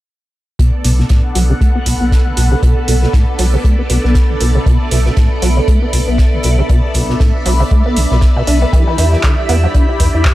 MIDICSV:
0, 0, Header, 1, 6, 480
1, 0, Start_track
1, 0, Key_signature, 2, "minor"
1, 0, Tempo, 508475
1, 559, Time_signature, 4, 2, 24, 8
1, 9761, End_track
2, 0, Start_track
2, 0, Title_t, "Analog synth pad"
2, 0, Program_c, 0, 89
2, 558, Note_on_c, 0, 62, 74
2, 933, Note_on_c, 0, 78, 88
2, 949, Note_on_c, 0, 69, 71
2, 1402, Note_on_c, 0, 83, 74
2, 4098, Note_on_c, 0, 76, 86
2, 4243, Note_off_c, 0, 78, 0
2, 8622, Note_on_c, 0, 67, 86
2, 9544, Note_off_c, 0, 69, 0
2, 9761, Note_off_c, 0, 62, 0
2, 9761, Note_off_c, 0, 67, 0
2, 9761, Note_off_c, 0, 76, 0
2, 9761, Note_off_c, 0, 83, 0
2, 9761, End_track
3, 0, Start_track
3, 0, Title_t, "String machine"
3, 0, Program_c, 1, 50
3, 558, Note_on_c, 1, 59, 78
3, 558, Note_on_c, 1, 69, 74
3, 559, Note_on_c, 1, 74, 86
3, 8201, Note_off_c, 1, 59, 0
3, 8201, Note_off_c, 1, 69, 0
3, 8239, Note_on_c, 1, 64, 79
3, 8240, Note_on_c, 1, 67, 75
3, 9761, Note_off_c, 1, 64, 0
3, 9761, Note_off_c, 1, 67, 0
3, 9761, Note_off_c, 1, 74, 0
3, 9761, End_track
4, 0, Start_track
4, 0, Title_t, "Acid bass"
4, 0, Program_c, 2, 38
4, 559, Note_on_c, 2, 47, 100
4, 672, Note_off_c, 2, 47, 0
4, 798, Note_on_c, 2, 47, 77
4, 874, Note_off_c, 2, 47, 0
4, 936, Note_on_c, 2, 47, 76
4, 993, Note_off_c, 2, 47, 0
4, 1039, Note_on_c, 2, 45, 79
4, 1152, Note_off_c, 2, 45, 0
4, 1278, Note_on_c, 2, 54, 95
4, 1354, Note_off_c, 2, 54, 0
4, 1415, Note_on_c, 2, 49, 98
4, 1449, Note_off_c, 2, 49, 0
4, 1518, Note_on_c, 2, 57, 79
4, 1631, Note_off_c, 2, 57, 0
4, 1656, Note_on_c, 2, 59, 77
4, 1690, Note_off_c, 2, 59, 0
4, 1759, Note_on_c, 2, 47, 72
4, 1834, Note_off_c, 2, 47, 0
4, 1896, Note_on_c, 2, 59, 70
4, 2136, Note_on_c, 2, 47, 100
4, 2150, Note_off_c, 2, 59, 0
4, 2193, Note_off_c, 2, 47, 0
4, 2239, Note_on_c, 2, 47, 75
4, 2352, Note_off_c, 2, 47, 0
4, 2375, Note_on_c, 2, 49, 101
4, 2410, Note_off_c, 2, 49, 0
4, 2479, Note_on_c, 2, 47, 100
4, 2592, Note_off_c, 2, 47, 0
4, 2719, Note_on_c, 2, 47, 75
4, 2794, Note_off_c, 2, 47, 0
4, 2855, Note_on_c, 2, 47, 77
4, 2912, Note_off_c, 2, 47, 0
4, 2959, Note_on_c, 2, 45, 79
4, 3072, Note_off_c, 2, 45, 0
4, 3199, Note_on_c, 2, 54, 98
4, 3274, Note_off_c, 2, 54, 0
4, 3336, Note_on_c, 2, 49, 95
4, 3370, Note_off_c, 2, 49, 0
4, 3440, Note_on_c, 2, 57, 81
4, 3552, Note_off_c, 2, 57, 0
4, 3576, Note_on_c, 2, 59, 76
4, 3610, Note_off_c, 2, 59, 0
4, 3680, Note_on_c, 2, 47, 72
4, 3755, Note_off_c, 2, 47, 0
4, 3816, Note_on_c, 2, 59, 73
4, 4056, Note_on_c, 2, 47, 102
4, 4070, Note_off_c, 2, 59, 0
4, 4113, Note_off_c, 2, 47, 0
4, 4159, Note_on_c, 2, 47, 72
4, 4272, Note_off_c, 2, 47, 0
4, 4295, Note_on_c, 2, 49, 100
4, 4330, Note_off_c, 2, 49, 0
4, 4398, Note_on_c, 2, 47, 101
4, 4511, Note_off_c, 2, 47, 0
4, 4639, Note_on_c, 2, 47, 75
4, 4714, Note_off_c, 2, 47, 0
4, 4775, Note_on_c, 2, 47, 74
4, 4832, Note_off_c, 2, 47, 0
4, 4878, Note_on_c, 2, 45, 81
4, 4991, Note_off_c, 2, 45, 0
4, 5119, Note_on_c, 2, 54, 99
4, 5194, Note_off_c, 2, 54, 0
4, 5256, Note_on_c, 2, 49, 96
4, 5290, Note_off_c, 2, 49, 0
4, 5359, Note_on_c, 2, 57, 79
4, 5472, Note_off_c, 2, 57, 0
4, 5496, Note_on_c, 2, 59, 78
4, 5530, Note_off_c, 2, 59, 0
4, 5600, Note_on_c, 2, 47, 73
4, 5675, Note_off_c, 2, 47, 0
4, 5736, Note_on_c, 2, 59, 74
4, 5976, Note_on_c, 2, 47, 101
4, 5991, Note_off_c, 2, 59, 0
4, 6033, Note_off_c, 2, 47, 0
4, 6080, Note_on_c, 2, 47, 72
4, 6193, Note_off_c, 2, 47, 0
4, 6217, Note_on_c, 2, 49, 100
4, 6250, Note_off_c, 2, 49, 0
4, 6320, Note_on_c, 2, 47, 98
4, 6432, Note_off_c, 2, 47, 0
4, 6560, Note_on_c, 2, 47, 78
4, 6635, Note_off_c, 2, 47, 0
4, 6697, Note_on_c, 2, 47, 76
4, 6753, Note_off_c, 2, 47, 0
4, 6800, Note_on_c, 2, 45, 80
4, 6912, Note_off_c, 2, 45, 0
4, 7039, Note_on_c, 2, 54, 98
4, 7114, Note_off_c, 2, 54, 0
4, 7176, Note_on_c, 2, 49, 97
4, 7210, Note_off_c, 2, 49, 0
4, 7279, Note_on_c, 2, 57, 82
4, 7392, Note_off_c, 2, 57, 0
4, 7417, Note_on_c, 2, 59, 77
4, 7519, Note_on_c, 2, 47, 76
4, 7533, Note_off_c, 2, 59, 0
4, 7564, Note_off_c, 2, 47, 0
4, 7656, Note_on_c, 2, 47, 71
4, 7713, Note_off_c, 2, 47, 0
4, 7896, Note_on_c, 2, 47, 100
4, 7953, Note_off_c, 2, 47, 0
4, 7999, Note_on_c, 2, 62, 72
4, 8112, Note_off_c, 2, 62, 0
4, 8137, Note_on_c, 2, 59, 75
4, 8170, Note_off_c, 2, 59, 0
4, 8239, Note_on_c, 2, 52, 99
4, 8352, Note_off_c, 2, 52, 0
4, 8376, Note_on_c, 2, 52, 75
4, 8461, Note_off_c, 2, 52, 0
4, 8479, Note_on_c, 2, 52, 75
4, 8554, Note_off_c, 2, 52, 0
4, 8617, Note_on_c, 2, 52, 75
4, 8673, Note_off_c, 2, 52, 0
4, 8720, Note_on_c, 2, 50, 80
4, 8832, Note_off_c, 2, 50, 0
4, 8959, Note_on_c, 2, 59, 97
4, 9034, Note_off_c, 2, 59, 0
4, 9095, Note_on_c, 2, 54, 98
4, 9130, Note_off_c, 2, 54, 0
4, 9199, Note_on_c, 2, 62, 77
4, 9312, Note_off_c, 2, 62, 0
4, 9336, Note_on_c, 2, 64, 75
4, 9370, Note_off_c, 2, 64, 0
4, 9439, Note_on_c, 2, 52, 76
4, 9514, Note_off_c, 2, 52, 0
4, 9576, Note_on_c, 2, 64, 73
4, 9761, Note_off_c, 2, 64, 0
4, 9761, End_track
5, 0, Start_track
5, 0, Title_t, "Sub bass"
5, 0, Program_c, 3, 38
5, 798, Note_on_c, 3, 35, 96
5, 966, Note_off_c, 3, 35, 0
5, 1278, Note_on_c, 3, 35, 91
5, 1446, Note_off_c, 3, 35, 0
5, 1758, Note_on_c, 3, 35, 89
5, 1847, Note_off_c, 3, 35, 0
5, 1895, Note_on_c, 3, 35, 90
5, 2039, Note_off_c, 3, 35, 0
5, 2237, Note_on_c, 3, 35, 96
5, 2405, Note_off_c, 3, 35, 0
5, 2718, Note_on_c, 3, 35, 96
5, 2886, Note_off_c, 3, 35, 0
5, 3199, Note_on_c, 3, 35, 91
5, 3366, Note_off_c, 3, 35, 0
5, 3679, Note_on_c, 3, 35, 90
5, 3768, Note_off_c, 3, 35, 0
5, 3816, Note_on_c, 3, 35, 84
5, 3960, Note_off_c, 3, 35, 0
5, 4159, Note_on_c, 3, 35, 99
5, 4327, Note_off_c, 3, 35, 0
5, 4640, Note_on_c, 3, 35, 96
5, 4807, Note_off_c, 3, 35, 0
5, 5119, Note_on_c, 3, 35, 91
5, 5286, Note_off_c, 3, 35, 0
5, 5600, Note_on_c, 3, 35, 90
5, 5688, Note_off_c, 3, 35, 0
5, 5736, Note_on_c, 3, 35, 87
5, 5880, Note_off_c, 3, 35, 0
5, 6080, Note_on_c, 3, 35, 98
5, 6247, Note_off_c, 3, 35, 0
5, 6559, Note_on_c, 3, 35, 96
5, 6727, Note_off_c, 3, 35, 0
5, 7040, Note_on_c, 3, 35, 90
5, 7207, Note_off_c, 3, 35, 0
5, 7520, Note_on_c, 3, 35, 93
5, 7608, Note_off_c, 3, 35, 0
5, 7657, Note_on_c, 3, 35, 89
5, 7800, Note_off_c, 3, 35, 0
5, 7999, Note_on_c, 3, 35, 97
5, 8166, Note_off_c, 3, 35, 0
5, 8479, Note_on_c, 3, 40, 99
5, 8646, Note_off_c, 3, 40, 0
5, 8958, Note_on_c, 3, 40, 94
5, 9126, Note_off_c, 3, 40, 0
5, 9439, Note_on_c, 3, 40, 93
5, 9528, Note_off_c, 3, 40, 0
5, 9575, Note_on_c, 3, 40, 85
5, 9719, Note_off_c, 3, 40, 0
5, 9761, End_track
6, 0, Start_track
6, 0, Title_t, "Drums"
6, 559, Note_on_c, 9, 36, 108
6, 561, Note_on_c, 9, 42, 87
6, 653, Note_off_c, 9, 36, 0
6, 656, Note_off_c, 9, 42, 0
6, 796, Note_on_c, 9, 42, 73
6, 798, Note_on_c, 9, 46, 99
6, 890, Note_off_c, 9, 42, 0
6, 892, Note_off_c, 9, 46, 0
6, 940, Note_on_c, 9, 38, 37
6, 1032, Note_on_c, 9, 42, 77
6, 1035, Note_off_c, 9, 38, 0
6, 1039, Note_on_c, 9, 36, 117
6, 1040, Note_on_c, 9, 38, 109
6, 1126, Note_off_c, 9, 42, 0
6, 1133, Note_off_c, 9, 36, 0
6, 1134, Note_off_c, 9, 38, 0
6, 1278, Note_on_c, 9, 46, 89
6, 1288, Note_on_c, 9, 42, 63
6, 1372, Note_off_c, 9, 46, 0
6, 1382, Note_off_c, 9, 42, 0
6, 1519, Note_on_c, 9, 36, 114
6, 1524, Note_on_c, 9, 42, 87
6, 1613, Note_off_c, 9, 36, 0
6, 1618, Note_off_c, 9, 42, 0
6, 1756, Note_on_c, 9, 42, 69
6, 1758, Note_on_c, 9, 46, 105
6, 1759, Note_on_c, 9, 36, 58
6, 1850, Note_off_c, 9, 42, 0
6, 1852, Note_off_c, 9, 46, 0
6, 1853, Note_off_c, 9, 36, 0
6, 1999, Note_on_c, 9, 36, 110
6, 2004, Note_on_c, 9, 38, 104
6, 2005, Note_on_c, 9, 42, 94
6, 2093, Note_off_c, 9, 36, 0
6, 2098, Note_off_c, 9, 38, 0
6, 2099, Note_off_c, 9, 42, 0
6, 2238, Note_on_c, 9, 42, 63
6, 2238, Note_on_c, 9, 46, 91
6, 2332, Note_off_c, 9, 46, 0
6, 2333, Note_off_c, 9, 42, 0
6, 2479, Note_on_c, 9, 36, 115
6, 2480, Note_on_c, 9, 42, 89
6, 2573, Note_off_c, 9, 36, 0
6, 2575, Note_off_c, 9, 42, 0
6, 2718, Note_on_c, 9, 46, 100
6, 2724, Note_on_c, 9, 42, 61
6, 2813, Note_off_c, 9, 46, 0
6, 2818, Note_off_c, 9, 42, 0
6, 2858, Note_on_c, 9, 38, 44
6, 2953, Note_off_c, 9, 38, 0
6, 2957, Note_on_c, 9, 38, 109
6, 2959, Note_on_c, 9, 36, 118
6, 2963, Note_on_c, 9, 42, 76
6, 3052, Note_off_c, 9, 38, 0
6, 3054, Note_off_c, 9, 36, 0
6, 3057, Note_off_c, 9, 42, 0
6, 3193, Note_on_c, 9, 46, 69
6, 3198, Note_off_c, 9, 46, 0
6, 3198, Note_on_c, 9, 46, 95
6, 3293, Note_off_c, 9, 46, 0
6, 3439, Note_on_c, 9, 36, 116
6, 3444, Note_on_c, 9, 42, 83
6, 3534, Note_off_c, 9, 36, 0
6, 3538, Note_off_c, 9, 42, 0
6, 3679, Note_on_c, 9, 42, 72
6, 3679, Note_on_c, 9, 46, 106
6, 3773, Note_off_c, 9, 42, 0
6, 3773, Note_off_c, 9, 46, 0
6, 3821, Note_on_c, 9, 38, 35
6, 3913, Note_off_c, 9, 38, 0
6, 3913, Note_on_c, 9, 38, 111
6, 3919, Note_on_c, 9, 36, 115
6, 3919, Note_on_c, 9, 42, 89
6, 4007, Note_off_c, 9, 38, 0
6, 4014, Note_off_c, 9, 36, 0
6, 4014, Note_off_c, 9, 42, 0
6, 4156, Note_on_c, 9, 42, 67
6, 4159, Note_on_c, 9, 46, 91
6, 4251, Note_off_c, 9, 42, 0
6, 4254, Note_off_c, 9, 46, 0
6, 4400, Note_on_c, 9, 36, 119
6, 4403, Note_on_c, 9, 42, 79
6, 4494, Note_off_c, 9, 36, 0
6, 4497, Note_off_c, 9, 42, 0
6, 4639, Note_on_c, 9, 46, 105
6, 4640, Note_on_c, 9, 42, 70
6, 4733, Note_off_c, 9, 46, 0
6, 4735, Note_off_c, 9, 42, 0
6, 4771, Note_on_c, 9, 38, 38
6, 4866, Note_off_c, 9, 38, 0
6, 4878, Note_on_c, 9, 42, 84
6, 4880, Note_on_c, 9, 36, 120
6, 4883, Note_on_c, 9, 38, 116
6, 4972, Note_off_c, 9, 42, 0
6, 4974, Note_off_c, 9, 36, 0
6, 4977, Note_off_c, 9, 38, 0
6, 5119, Note_on_c, 9, 46, 90
6, 5120, Note_on_c, 9, 42, 60
6, 5213, Note_off_c, 9, 46, 0
6, 5215, Note_off_c, 9, 42, 0
6, 5360, Note_on_c, 9, 36, 123
6, 5361, Note_on_c, 9, 42, 84
6, 5454, Note_off_c, 9, 36, 0
6, 5455, Note_off_c, 9, 42, 0
6, 5599, Note_on_c, 9, 42, 59
6, 5599, Note_on_c, 9, 46, 109
6, 5600, Note_on_c, 9, 36, 63
6, 5693, Note_off_c, 9, 46, 0
6, 5694, Note_off_c, 9, 36, 0
6, 5694, Note_off_c, 9, 42, 0
6, 5836, Note_on_c, 9, 38, 106
6, 5839, Note_on_c, 9, 36, 118
6, 5843, Note_on_c, 9, 42, 89
6, 5931, Note_off_c, 9, 38, 0
6, 5934, Note_off_c, 9, 36, 0
6, 5938, Note_off_c, 9, 42, 0
6, 6070, Note_on_c, 9, 42, 62
6, 6079, Note_on_c, 9, 46, 95
6, 6165, Note_off_c, 9, 42, 0
6, 6173, Note_off_c, 9, 46, 0
6, 6319, Note_on_c, 9, 36, 116
6, 6319, Note_on_c, 9, 42, 75
6, 6413, Note_off_c, 9, 42, 0
6, 6414, Note_off_c, 9, 36, 0
6, 6554, Note_on_c, 9, 42, 63
6, 6559, Note_on_c, 9, 36, 61
6, 6559, Note_on_c, 9, 46, 103
6, 6648, Note_off_c, 9, 42, 0
6, 6654, Note_off_c, 9, 36, 0
6, 6654, Note_off_c, 9, 46, 0
6, 6699, Note_on_c, 9, 38, 37
6, 6794, Note_off_c, 9, 38, 0
6, 6797, Note_on_c, 9, 38, 102
6, 6800, Note_on_c, 9, 36, 123
6, 6804, Note_on_c, 9, 42, 79
6, 6891, Note_off_c, 9, 38, 0
6, 6894, Note_off_c, 9, 36, 0
6, 6899, Note_off_c, 9, 42, 0
6, 7034, Note_on_c, 9, 46, 74
6, 7039, Note_off_c, 9, 46, 0
6, 7039, Note_on_c, 9, 46, 93
6, 7134, Note_off_c, 9, 46, 0
6, 7280, Note_on_c, 9, 36, 119
6, 7280, Note_on_c, 9, 42, 77
6, 7374, Note_off_c, 9, 36, 0
6, 7374, Note_off_c, 9, 42, 0
6, 7519, Note_on_c, 9, 46, 102
6, 7524, Note_on_c, 9, 42, 63
6, 7613, Note_off_c, 9, 46, 0
6, 7618, Note_off_c, 9, 42, 0
6, 7657, Note_on_c, 9, 38, 38
6, 7751, Note_off_c, 9, 38, 0
6, 7753, Note_on_c, 9, 38, 114
6, 7760, Note_on_c, 9, 36, 116
6, 7760, Note_on_c, 9, 42, 86
6, 7848, Note_off_c, 9, 38, 0
6, 7854, Note_off_c, 9, 36, 0
6, 7855, Note_off_c, 9, 42, 0
6, 7999, Note_on_c, 9, 46, 90
6, 8005, Note_on_c, 9, 42, 66
6, 8093, Note_off_c, 9, 46, 0
6, 8099, Note_off_c, 9, 42, 0
6, 8240, Note_on_c, 9, 36, 110
6, 8244, Note_on_c, 9, 42, 86
6, 8334, Note_off_c, 9, 36, 0
6, 8338, Note_off_c, 9, 42, 0
6, 8479, Note_on_c, 9, 42, 70
6, 8479, Note_on_c, 9, 46, 98
6, 8573, Note_off_c, 9, 42, 0
6, 8573, Note_off_c, 9, 46, 0
6, 8617, Note_on_c, 9, 38, 37
6, 8712, Note_off_c, 9, 38, 0
6, 8717, Note_on_c, 9, 38, 104
6, 8717, Note_on_c, 9, 39, 114
6, 8719, Note_on_c, 9, 42, 88
6, 8720, Note_on_c, 9, 36, 120
6, 8811, Note_off_c, 9, 38, 0
6, 8812, Note_off_c, 9, 39, 0
6, 8813, Note_off_c, 9, 42, 0
6, 8814, Note_off_c, 9, 36, 0
6, 8959, Note_on_c, 9, 46, 87
6, 8960, Note_on_c, 9, 42, 61
6, 9053, Note_off_c, 9, 46, 0
6, 9055, Note_off_c, 9, 42, 0
6, 9199, Note_on_c, 9, 36, 114
6, 9199, Note_on_c, 9, 42, 86
6, 9294, Note_off_c, 9, 36, 0
6, 9294, Note_off_c, 9, 42, 0
6, 9439, Note_on_c, 9, 36, 58
6, 9439, Note_on_c, 9, 46, 106
6, 9445, Note_on_c, 9, 42, 63
6, 9533, Note_off_c, 9, 46, 0
6, 9534, Note_off_c, 9, 36, 0
6, 9539, Note_off_c, 9, 42, 0
6, 9677, Note_on_c, 9, 39, 109
6, 9678, Note_on_c, 9, 38, 117
6, 9679, Note_on_c, 9, 36, 108
6, 9684, Note_on_c, 9, 42, 81
6, 9761, Note_off_c, 9, 36, 0
6, 9761, Note_off_c, 9, 38, 0
6, 9761, Note_off_c, 9, 39, 0
6, 9761, Note_off_c, 9, 42, 0
6, 9761, End_track
0, 0, End_of_file